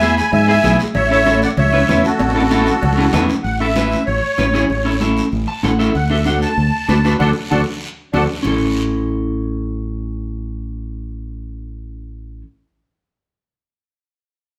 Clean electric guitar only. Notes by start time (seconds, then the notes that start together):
0.01 B3 E4 G#4
0.48 B3 E4 G#4
0.64 B3 E4 G#4
1.10 C#4 E4 A4
1.26 C#4 E4 A4
1.73 C#4 E4 B4
1.88 C#4 E4 B4
2.35 C#4 E4 A4
2.51 C#4 E4 A4
2.98 C#4 E4 G#4
3.13 C#4 E4 B4
3.60 C#4 E4 A4
3.76 C#4 E4 B4
4.38 C#4 E4 B4
4.54 C#4 E4 G#4
4.85 C#4 E4 A4
5.00 C#4 E4 A4
5.48 A5
5.63 C#4 E4 A4 F#5
5.79 C#4 E4 A4 E5
6.10 D4 F#4 A4
6.25 D4 F#4 A4
6.88 D4 F#4 B4
7.04 D4 F#4 B4
7.20 D4 F#4 A4
7.51 D4 F#4 A4
8.13 D4 F#4 A4
8.43 C#4 E4
8.47 A4